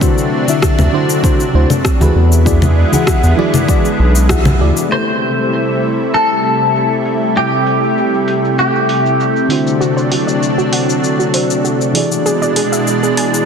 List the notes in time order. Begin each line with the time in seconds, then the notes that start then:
Already playing: C3 F#3 A3 D4
0.01 D3 D4 E4 F#4 C5, kick, cabasa
0.18 cabasa
0.47 D3 D4 E4 F#4 E5, cabasa
0.62 kick, cross-stick, cabasa
0.79 D2, low conga, cabasa
0.92 D3 D4 E4 F#4 C5
1.10 cabasa
1.23 D3 D4 E4 F#4 C5, kick, cabasa
1.40 cabasa
1.53 D2 D3 D4 E4 F#4 C5
1.70 low conga, cabasa
1.85 kick, cross-stick, cabasa
2.00 D2 E3 E4 F#4 G#4 B4, low conga, cabasa
2.15 E2 D3 G#3 B3 E4
2.32 cabasa
2.45 E3 E4 F#4 G#4 D5, kick, cabasa
2.62 low conga, cabasa
2.92 E3 E4 F#4 G#4 F#5, low conga, cabasa
3.07 kick, cross-stick, cabasa
3.23 E2, cabasa
3.37 E3 E4 F#4 G#4 D5, high conga
3.54 low conga, cabasa
3.68 E3 E4 F#4 G#4 D5, kick, cabasa
3.85 cabasa
3.99 B1
4.15 cabasa
4.29 E3 E4 F#4 G#4 F#5, kick, cross-stick, cabasa
4.45 low conga, cabasa
4.59 D2 E3 E4 F#4 G#4 D5
4.77 cabasa
4.89 C3 G3 A3 E4 G4 A4 C5, cabasa
4.93 C5
5.08 cabasa
5.39 cabasa
5.53 cabasa
5.69 cabasa
5.83 open hi-hat
6.00 cabasa
6.14 A4
6.44 open hi-hat
6.61 cabasa
6.76 cabasa
6.92 cabasa
7.05 open hi-hat
7.22 cabasa
7.37 G4, cabasa
7.53 cabasa
7.67 open hi-hat
7.83 cabasa
7.98 cabasa
8.14 cabasa
8.28 open hi-hat
8.45 cabasa
8.59 G4, cabasa
8.75 cabasa
8.89 open hi-hat
9.06 cabasa
9.20 cabasa
9.36 cabasa
9.48 D3 F#3 D4 E4 F#4, open hi-hat
9.52 C5
9.67 cabasa
9.81 F#4, cabasa
9.97 C5, cabasa
10.11 F#4, open hi-hat
10.27 D5, cabasa
10.43 cabasa
10.58 F#4, cabasa
10.72 F#5, open hi-hat
10.90 cabasa
11.04 cabasa
11.19 F#4, cabasa
11.34 C5, open hi-hat
11.51 cabasa
11.64 F#4, cabasa
11.81 cabasa
11.93 B2 E3 G#3 D4 E4 F#4 G#4, open hi-hat
11.97 D5
12.12 cabasa
12.26 G#4, cabasa
12.42 D5, cabasa
12.56 G#4, open hi-hat
12.72 E5, cabasa
12.87 cabasa
13.03 G#4, cabasa
13.17 G#5, open hi-hat
13.34 cabasa